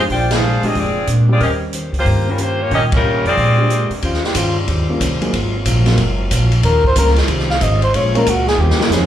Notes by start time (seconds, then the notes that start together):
0.10 A#1 A#2 G#3 D4 F4 G4 C5 D5 G5, kick, open hi-hat
0.31 D4 G#4 C5 F5, snare, ride
0.43 A#2 G#3 D4 G4
0.63 A1 G#3 C4 D4 F4 G4 G#4 D#5, open hi-hat
0.75 F1 A#2 G#3 C4 D4 F4 G4 G#4 D5, kick, open hi-hat
1.07 A#2 G#3 D4 G4, closed hi-hat
1.28 G3 C4 C#4 F4 G4 G#4 D5
1.40 D#2 D#3 C#4 G4 A#4 C5 D#5, kick, open hi-hat
1.73 D#3 C#4 G4 C5, closed hi-hat
1.92 C#2, open hi-hat
1.98 A#3 F4 G4 C5
2.05 G2 D#3 C#4 G4 C5, kick, open hi-hat
2.26 G3 C4 C#4 F4 A#4
2.38 D#3 A#3 C#4 F4 G4 C5, closed hi-hat
2.61 A#3 F4 G4 C#5
2.70 A#2 D#3 G3 C4 C#4 F4 G4 A#4 C5 D#5, kick, open hi-hat
2.92 G3 C#4 F4 A#4, kick, ride
3.03 D#3 C#4 G4 C5
3.25 F2 C4 F4 G#4 D5, open hi-hat
3.36 A#2 G#3 D4 G4, kick, open hi-hat
3.58 G#3 C4 D4 G4
3.70 A#2 G#3 D4 G4, closed hi-hat
3.90 muted upright bass stroke, open hi-hat
4.01 D#2 C#3 D#3 G3 C4 C#4 F4 G4 C5, kick, ride
4.14 snare
4.24 G4, snare
4.35 G2 D#3 C#4 F4 G4 C5, kick, hi-hat pedal, ride
4.67 D#2 D#3 C#4 G4 C5, kick, ride
4.89 G3 A#3 C4 C#4 F4
5.00 C2 D#3 C#4 G4 C5, kick, hi-hat pedal, ride
5.20 F#3 A#3 C4 D#4 G#4, muted upright bass stroke, ride
5.32 G#1 G#2 C3 F#3 A#3 C4 F4, kick, ride
5.65 A#1 G#2 F#3 C4 F4, kick, hi-hat pedal, ride
5.86 F#3 A#3 C4 D#4 F4, snare, ride
5.97 F#1 G#2 F#3 C4 F4, kick, ride
6.30 A#1 G#2 F#3 C4 F4, kick, hi-hat pedal, ride
6.52 ride
6.62 D#2 D#3 G3 C4 C#4 G4 A#4 C5, kick, ride
6.84 C5, kick
6.96 C#2 D#3 G3 A#3 C4 C#4 F4 G4 A#4 C5, kick, hi-hat pedal, ride
7.07 snare
7.16 snare, ride
7.28 C2 D#3 C#4 G4 C5, kick, ride
7.39 snare
7.50 F5, snare
7.61 G#1 D#3 C#4 G4 C5 D#5, kick, hi-hat pedal, ride
7.82 C5, ride
7.93 A#1 A#2 G#3 A#3 C#4 F4 C#5, kick, ride
8.14 G#3 A#3 C4 C#4 F4 A#4, ride
8.25 C#2 A#2 G#3 C#4 F4 F#4, kick, hi-hat pedal, ride
8.48 G#4, snare
8.57 D#2 D#3 G3 A#3 C4 C#4 F4 G4
8.61 G4 C5
8.70 snare
8.78 A#3, muted upright bass stroke, snare
8.90 F2 D#3 C#4 G4 C5, snare, hi-hat pedal